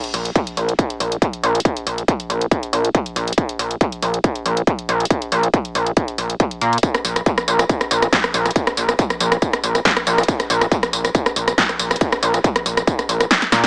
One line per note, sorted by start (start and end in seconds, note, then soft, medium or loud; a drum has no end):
0.04 closed hi-hat medium
0.14 0.30 A#1 loud
0.14 open hi-hat loud
0.25 closed hi-hat medium
0.36 kick loud
0.36 closed hi-hat medium
0.47 closed hi-hat medium
0.57 0.74 A#1 medium
0.57 open hi-hat loud
0.69 closed hi-hat medium
0.79 kick loud
0.79 closed hi-hat medium
0.90 closed hi-hat medium
1.00 1.17 A#1 medium
1.00 open hi-hat loud
1.12 closed hi-hat medium
1.22 kick loud
1.22 closed hi-hat medium
1.33 closed hi-hat soft
1.43 1.60 A#1 loud
1.43 open hi-hat loud
1.55 closed hi-hat medium
1.60 closed hi-hat medium
1.65 kick loud
1.65 closed hi-hat medium
1.77 closed hi-hat medium
1.87 2.03 A#1 loud
1.87 open hi-hat loud
1.98 closed hi-hat medium
2.08 kick loud
2.08 closed hi-hat medium
2.20 closed hi-hat medium
2.30 2.46 A#1 medium
2.30 open hi-hat loud
2.41 closed hi-hat medium
2.51 kick loud
2.51 closed hi-hat medium
2.63 closed hi-hat medium
2.73 2.89 A#1 medium
2.73 open hi-hat loud
2.85 closed hi-hat medium
2.95 kick loud
2.95 closed hi-hat medium
3.06 closed hi-hat medium
3.16 3.32 A#1 loud
3.16 open hi-hat loud
3.28 closed hi-hat medium
3.33 closed hi-hat medium
3.38 kick loud
3.38 closed hi-hat medium
3.49 closed hi-hat medium
3.59 3.76 A#1 medium
3.59 open hi-hat loud
3.71 closed hi-hat medium
3.81 kick loud
3.81 closed hi-hat medium
3.92 closed hi-hat medium
4.02 4.19 A#1 medium
4.02 open hi-hat loud
4.14 closed hi-hat medium
4.24 kick loud
4.24 closed hi-hat medium
4.35 closed hi-hat medium
4.46 4.62 A#1 medium
4.46 open hi-hat loud
4.57 closed hi-hat medium
4.67 kick loud
4.67 closed hi-hat medium
4.79 closed hi-hat soft
4.89 5.05 A#1 loud
4.89 open hi-hat loud
5.00 closed hi-hat medium
5.05 closed hi-hat medium
5.10 kick loud
5.10 closed hi-hat medium
5.22 closed hi-hat medium
5.32 5.48 A#1 loud
5.32 open hi-hat loud
5.43 closed hi-hat soft
5.54 kick loud
5.54 closed hi-hat medium
5.65 closed hi-hat medium
5.75 5.92 A#1 medium
5.75 open hi-hat loud
5.87 closed hi-hat medium
5.97 kick loud
5.97 closed hi-hat medium
6.08 closed hi-hat medium
6.18 6.35 A#1 medium
6.18 open hi-hat loud
6.30 closed hi-hat medium
6.40 kick loud
6.40 closed hi-hat medium
6.51 closed hi-hat soft
6.61 6.78 A#2 medium
6.61 open hi-hat loud
6.73 closed hi-hat medium
6.78 closed hi-hat medium
6.83 kick loud
6.83 closed hi-hat medium
6.83 tambourine soft
6.94 cross-stick loud
6.94 closed hi-hat medium
6.94 tambourine soft
7.05 7.21 A#1 loud
7.05 open hi-hat loud
7.05 tambourine medium
7.16 cross-stick medium
7.16 closed hi-hat soft
7.16 tambourine soft
7.26 kick loud
7.26 closed hi-hat medium
7.26 tambourine soft
7.38 cross-stick loud
7.38 closed hi-hat medium
7.38 tambourine soft
7.48 7.64 A#1 medium
7.48 open hi-hat loud
7.48 tambourine medium
7.59 cross-stick loud
7.59 closed hi-hat medium
7.59 tambourine soft
7.69 kick loud
7.69 closed hi-hat medium
7.69 tambourine soft
7.81 cross-stick medium
7.81 closed hi-hat medium
7.81 tambourine soft
7.91 8.07 A#1 medium
7.91 open hi-hat loud
7.91 tambourine medium
8.02 cross-stick medium
8.02 closed hi-hat medium
8.02 tambourine soft
8.13 kick loud
8.13 snare loud
8.13 closed hi-hat medium
8.13 tambourine soft
8.24 cross-stick medium
8.24 closed hi-hat soft
8.24 tambourine soft
8.34 8.51 A#1 loud
8.34 open hi-hat loud
8.34 tambourine medium
8.46 cross-stick medium
8.46 closed hi-hat soft
8.46 tambourine soft
8.51 closed hi-hat medium
8.56 kick loud
8.56 closed hi-hat medium
8.56 tambourine soft
8.67 cross-stick medium
8.67 closed hi-hat medium
8.67 tambourine soft
8.77 8.94 A#1 loud
8.77 open hi-hat loud
8.77 tambourine medium
8.89 cross-stick medium
8.89 closed hi-hat soft
8.89 tambourine soft
8.99 kick loud
8.99 closed hi-hat medium
8.99 tambourine soft
9.10 cross-stick medium
9.10 closed hi-hat soft
9.10 tambourine soft
9.20 9.37 A#1 medium
9.20 open hi-hat loud
9.20 tambourine medium
9.32 cross-stick loud
9.32 closed hi-hat medium
9.32 tambourine soft
9.42 kick loud
9.42 closed hi-hat medium
9.42 tambourine soft
9.53 cross-stick medium
9.53 closed hi-hat soft
9.53 tambourine soft
9.64 9.80 A#1 medium
9.64 open hi-hat loud
9.64 tambourine medium
9.75 cross-stick medium
9.75 closed hi-hat medium
9.75 tambourine soft
9.85 kick loud
9.85 snare loud
9.85 closed hi-hat medium
9.85 tambourine soft
9.97 cross-stick medium
9.97 closed hi-hat soft
9.97 tambourine soft
10.07 10.23 A#1 loud
10.07 open hi-hat loud
10.07 tambourine medium
10.18 cross-stick medium
10.18 closed hi-hat soft
10.18 tambourine soft
10.23 closed hi-hat medium
10.28 kick loud
10.28 closed hi-hat medium
10.28 tambourine soft
10.40 cross-stick medium
10.40 closed hi-hat medium
10.40 tambourine soft
10.50 10.66 A#1 loud
10.50 open hi-hat loud
10.50 tambourine medium
10.61 cross-stick medium
10.61 closed hi-hat medium
10.61 tambourine soft
10.72 kick loud
10.72 closed hi-hat medium
10.72 tambourine soft
10.83 cross-stick medium
10.83 closed hi-hat medium
10.83 tambourine soft
10.93 11.09 A#1 medium
10.93 open hi-hat loud
10.93 tambourine medium
11.05 cross-stick medium
11.05 closed hi-hat medium
11.05 tambourine soft
11.15 kick loud
11.15 closed hi-hat medium
11.15 tambourine soft
11.26 cross-stick medium
11.26 closed hi-hat medium
11.26 tambourine soft
11.36 11.53 A#1 medium
11.36 open hi-hat loud
11.36 tambourine medium
11.48 cross-stick medium
11.48 closed hi-hat soft
11.48 tambourine soft
11.58 kick loud
11.58 snare loud
11.58 closed hi-hat medium
11.58 tambourine soft
11.69 cross-stick medium
11.69 closed hi-hat soft
11.69 tambourine soft
11.79 11.96 A#1 loud
11.79 open hi-hat loud
11.79 tambourine medium
11.91 cross-stick medium
11.91 closed hi-hat soft
11.91 tambourine soft
11.96 closed hi-hat medium
12.01 kick loud
12.01 closed hi-hat medium
12.01 tambourine soft
12.12 cross-stick medium
12.12 closed hi-hat medium
12.12 tambourine soft
12.23 12.39 A#1 loud
12.23 open hi-hat loud
12.23 tambourine medium
12.34 cross-stick medium
12.34 closed hi-hat medium
12.34 tambourine soft
12.44 kick loud
12.44 closed hi-hat medium
12.44 tambourine soft
12.56 cross-stick medium
12.56 closed hi-hat medium
12.56 tambourine soft
12.66 12.82 A#1 medium
12.66 open hi-hat loud
12.66 tambourine medium
12.77 cross-stick medium
12.77 closed hi-hat medium
12.77 tambourine soft
12.87 kick loud
12.87 closed hi-hat medium
12.87 tambourine soft
12.99 cross-stick medium
12.99 closed hi-hat medium
12.99 tambourine soft
13.09 13.25 A#1 medium
13.09 open hi-hat loud
13.09 tambourine medium
13.21 cross-stick medium
13.21 closed hi-hat medium
13.21 tambourine soft
13.31 snare loud
13.31 closed hi-hat medium
13.31 tambourine soft
13.42 snare soft
13.42 closed hi-hat soft
13.42 tambourine soft
13.52 13.67 A#2 medium
13.52 snare medium
13.52 open hi-hat loud
13.52 tambourine medium
13.64 snare medium
13.64 closed hi-hat medium
13.64 tambourine soft